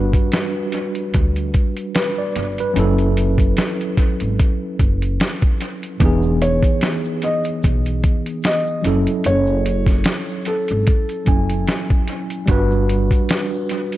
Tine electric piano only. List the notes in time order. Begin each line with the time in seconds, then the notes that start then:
Already playing: G3 D4 F#4 B4
1.95 B4
2.18 D5
2.60 B4
2.74 F#3 C#4 E4
2.79 A4
6.00 E3 B3 D#4
6.05 G#4
8.82 F#3 C#4 E4
8.87 A4
11.25 F#3 C#4 E4 G#5
12.46 G3 D4 F#4
12.51 B4